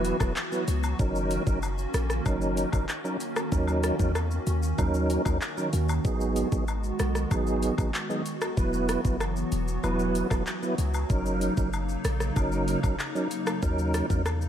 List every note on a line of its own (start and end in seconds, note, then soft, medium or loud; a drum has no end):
0.00 0.13 E1 loud
0.00 0.97 E3 medium
0.00 0.17 F#3 loud
0.00 0.97 F#3 medium
0.00 0.17 B3 medium
0.00 0.95 B3 medium
0.00 0.17 E4 medium
0.00 3.48 F#4 loud
0.00 0.17 B4 loud
0.05 closed hi-hat medium
0.05 cabasa medium
0.05 shaker medium
0.20 0.34 E1 medium
0.20 0.33 F#3 medium
0.20 0.33 B3 medium
0.20 0.33 E4 medium
0.20 0.33 B4 medium
0.20 kick medium
0.20 cross-stick medium
0.20 high woodblock medium
0.20 shaker medium
0.36 clap medium
0.36 shaker medium
0.52 0.64 F#3 medium
0.52 0.64 B3 medium
0.52 0.64 E4 medium
0.52 0.64 B4 medium
0.52 shaker medium
0.68 0.94 C#2 medium
0.68 closed hi-hat medium
0.68 cabasa medium
0.68 shaker medium
0.83 high woodblock medium
0.83 shaker medium
0.99 1.39 F#1 loud
0.99 8.53 D#3 medium
0.99 1.43 F#3 medium
0.99 6.01 A#3 medium
0.99 1.43 C#4 medium
0.99 6.01 C#4 medium
0.99 1.43 D#4 medium
0.99 1.43 A#4 loud
0.99 kick loud
0.99 shaker medium
1.15 shaker medium
1.31 closed hi-hat medium
1.31 cabasa medium
1.31 shaker medium
1.46 1.86 F#1 medium
1.46 1.59 F#3 medium
1.46 1.59 C#4 medium
1.46 1.59 D#4 medium
1.46 1.59 A#4 medium
1.46 kick medium
1.46 shaker medium
1.62 high woodblock medium
1.62 shaker medium
1.78 shaker medium
1.94 2.20 A#1 medium
1.94 cross-stick loud
1.94 closed hi-hat medium
1.94 cabasa medium
1.94 shaker medium
2.10 cross-stick medium
2.10 shaker medium
2.25 2.65 F#1 loud
2.25 2.69 F#3 medium
2.25 2.69 C#4 medium
2.25 2.69 D#4 medium
2.25 2.69 A#4 loud
2.25 kick medium
2.25 high woodblock medium
2.25 shaker medium
2.41 shaker medium
2.57 closed hi-hat medium
2.57 cabasa medium
2.57 shaker medium
2.72 2.86 F#1 loud
2.72 2.85 F#3 medium
2.72 2.85 C#4 medium
2.72 2.85 D#4 medium
2.72 2.85 A#4 medium
2.72 kick loud
2.72 high woodblock medium
2.72 shaker medium
2.89 clap medium
2.89 shaker medium
3.04 3.17 F#3 medium
3.04 3.17 C#4 medium
3.04 3.17 D#4 medium
3.04 3.17 A#4 medium
3.04 shaker medium
3.20 closed hi-hat medium
3.20 cabasa medium
3.20 shaker medium
3.36 cross-stick loud
3.36 high woodblock medium
3.36 shaker medium
3.52 3.92 D#2 loud
3.52 3.95 F#3 medium
3.52 3.96 C#4 medium
3.52 3.96 D#4 medium
3.52 11.06 F#4 medium
3.52 3.96 A#4 loud
3.52 kick loud
3.52 shaker medium
3.67 high woodblock medium
3.67 shaker medium
3.83 cross-stick loud
3.83 closed hi-hat medium
3.83 cabasa medium
3.83 shaker medium
3.99 4.39 E2 medium
3.99 4.11 F#3 medium
3.99 4.12 C#4 medium
3.99 4.12 D#4 medium
3.99 4.12 A#4 medium
3.99 kick loud
3.99 shaker medium
4.15 cross-stick medium
4.15 high woodblock medium
4.15 shaker medium
4.31 shaker medium
4.47 4.73 D#2 medium
4.47 closed hi-hat medium
4.47 cabasa medium
4.47 shaker medium
4.63 shaker medium
4.78 5.18 D#2 loud
4.78 5.22 F#3 medium
4.78 5.22 C#4 medium
4.78 5.22 D#4 medium
4.78 5.22 A#4 loud
4.78 kick medium
4.78 high woodblock medium
4.78 shaker medium
4.94 shaker medium
5.10 closed hi-hat medium
5.10 cabasa medium
5.10 shaker medium
5.25 5.39 D#2 medium
5.25 5.38 F#3 medium
5.25 5.38 D#4 medium
5.25 5.38 A#4 medium
5.25 kick loud
5.25 high woodblock medium
5.25 shaker medium
5.41 clap medium
5.41 shaker medium
5.57 5.69 F#3 medium
5.57 5.70 C#4 medium
5.57 5.70 D#4 medium
5.57 5.70 A#4 medium
5.57 shaker medium
5.73 5.99 D#2 loud
5.73 closed hi-hat medium
5.73 cabasa medium
5.73 shaker medium
5.89 high woodblock medium
5.89 shaker medium
6.05 6.44 G#1 loud
6.05 6.48 F#3 medium
6.05 8.55 G#3 medium
6.05 8.55 B3 medium
6.05 6.48 B3 medium
6.05 6.48 D#4 medium
6.05 6.48 G#4 loud
6.05 kick loud
6.05 shaker medium
6.21 shaker medium
6.36 closed hi-hat medium
6.36 cabasa medium
6.36 shaker medium
6.52 6.92 G#1 medium
6.52 6.64 F#3 medium
6.52 6.64 B3 medium
6.52 6.64 D#4 medium
6.52 6.64 G#4 medium
6.52 kick loud
6.52 shaker medium
6.68 high woodblock medium
6.68 shaker medium
6.84 shaker medium
6.99 7.26 B1 medium
6.99 cross-stick loud
6.99 closed hi-hat medium
6.99 cabasa medium
6.99 shaker medium
7.15 cross-stick medium
7.15 shaker medium
7.31 7.71 G#1 medium
7.31 7.74 F#3 loud
7.31 7.74 B3 medium
7.31 7.75 D#4 medium
7.31 7.75 G#4 loud
7.31 kick medium
7.31 high woodblock medium
7.31 shaker medium
7.47 shaker medium
7.63 closed hi-hat medium
7.63 cabasa medium
7.63 shaker medium
7.78 7.91 G#1 loud
7.78 7.90 F#3 medium
7.78 7.91 B3 medium
7.78 7.91 D#4 medium
7.78 7.91 G#4 medium
7.78 kick loud
7.78 high woodblock medium
7.78 shaker medium
7.94 clap medium
7.94 shaker medium
8.09 8.22 F#3 medium
8.09 8.22 B3 medium
8.09 8.22 D#4 medium
8.09 8.22 G#4 medium
8.09 shaker medium
8.26 closed hi-hat medium
8.26 cabasa medium
8.26 shaker medium
8.41 cross-stick loud
8.41 high woodblock medium
8.41 shaker medium
8.57 8.97 E1 loud
8.57 11.07 E3 medium
8.57 9.01 F#3 loud
8.57 14.49 F#3 medium
8.57 9.01 B3 medium
8.57 11.07 B3 medium
8.57 9.01 E4 medium
8.57 9.01 B4 loud
8.57 kick loud
8.57 shaker medium
8.73 shaker medium
8.89 cross-stick loud
8.89 closed hi-hat medium
8.89 cabasa medium
8.89 shaker medium
9.04 9.44 F#1 medium
9.04 9.17 F#3 medium
9.04 9.17 B3 medium
9.04 9.17 E4 medium
9.04 9.17 B4 medium
9.04 kick medium
9.04 shaker medium
9.20 cross-stick medium
9.20 high woodblock medium
9.20 shaker medium
9.36 shaker medium
9.52 9.78 E1 loud
9.52 closed hi-hat medium
9.52 cabasa medium
9.52 shaker medium
9.68 shaker medium
9.83 10.23 E1 loud
9.83 10.27 F#3 loud
9.83 10.27 B3 medium
9.83 10.27 E4 medium
9.83 10.27 B4 loud
9.83 high woodblock medium
9.83 shaker medium
9.99 shaker medium
10.15 closed hi-hat medium
10.15 cabasa medium
10.15 shaker medium
10.30 10.44 E1 loud
10.30 10.43 F#3 medium
10.30 10.43 B3 medium
10.30 10.43 E4 medium
10.30 10.43 B4 medium
10.30 kick loud
10.30 cross-stick medium
10.30 high woodblock medium
10.30 shaker medium
10.47 clap medium
10.47 shaker medium
10.62 10.75 F#3 medium
10.62 10.75 B3 medium
10.62 10.75 E4 medium
10.62 10.75 B4 medium
10.62 shaker medium
10.78 11.05 C#2 medium
10.78 closed hi-hat medium
10.78 cabasa medium
10.78 shaker medium
10.94 high woodblock medium
10.94 shaker medium
11.10 11.49 F#1 loud
11.10 14.49 C#3 medium
11.10 11.53 F#3 loud
11.10 14.49 A#3 medium
11.10 11.53 C#4 medium
11.10 11.54 D#4 medium
11.10 14.49 D#4 medium
11.10 11.54 A#4 loud
11.10 kick loud
11.10 shaker medium
11.26 shaker medium
11.41 closed hi-hat medium
11.41 cabasa medium
11.41 shaker medium
11.57 11.97 F#1 medium
11.57 11.69 F#3 medium
11.57 11.70 C#4 medium
11.57 11.70 D#4 medium
11.57 11.70 A#4 medium
11.57 kick medium
11.57 shaker medium
11.73 high woodblock medium
11.73 shaker medium
11.89 shaker soft
12.05 12.31 A#1 medium
12.05 cross-stick loud
12.05 closed hi-hat medium
12.05 cabasa medium
12.05 shaker medium
12.20 cross-stick medium
12.20 shaker medium
12.36 12.76 F#1 loud
12.36 12.80 F#3 loud
12.36 12.80 C#4 medium
12.36 12.80 D#4 medium
12.36 12.80 A#4 loud
12.36 kick medium
12.36 high woodblock medium
12.36 shaker medium
12.52 shaker medium
12.68 closed hi-hat medium
12.68 cabasa medium
12.68 shaker medium
12.83 12.97 F#1 loud
12.83 12.96 F#3 medium
12.83 12.96 C#4 medium
12.83 12.96 D#4 medium
12.83 12.96 A#4 medium
12.83 kick loud
12.83 high woodblock medium
12.83 shaker medium
12.99 clap medium
12.99 shaker medium
13.15 13.27 F#3 medium
13.15 13.27 C#4 medium
13.15 13.28 D#4 medium
13.15 13.28 A#4 medium
13.15 shaker medium
13.31 closed hi-hat medium
13.31 cabasa medium
13.31 shaker medium
13.47 cross-stick loud
13.47 high woodblock medium
13.47 shaker medium
13.62 14.02 D#2 loud
13.62 14.06 F#3 medium
13.62 14.06 C#4 medium
13.62 14.06 D#4 medium
13.62 14.06 A#4 loud
13.62 kick loud
13.62 shaker medium
13.79 shaker medium
13.94 cross-stick loud
13.94 closed hi-hat medium
13.94 cabasa medium
13.94 shaker medium
14.10 14.49 E2 medium
14.10 14.22 F#3 medium
14.10 14.22 C#4 medium
14.10 14.22 D#4 medium
14.10 14.22 A#4 medium
14.10 kick medium
14.10 shaker medium
14.26 cross-stick medium
14.26 high woodblock medium
14.26 shaker medium
14.42 shaker medium